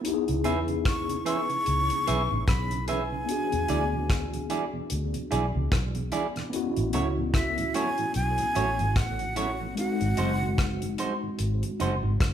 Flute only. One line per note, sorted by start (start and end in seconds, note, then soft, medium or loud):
0.87 1.24 C#6 loud
1.27 2.44 C#6 loud
2.48 2.85 B5 medium
2.89 4.46 G#5 medium
7.35 7.76 E5 medium
7.75 8.15 G#5 loud
8.15 8.98 G#5 loud
8.97 9.78 F#5 loud
9.78 10.95 F#5 loud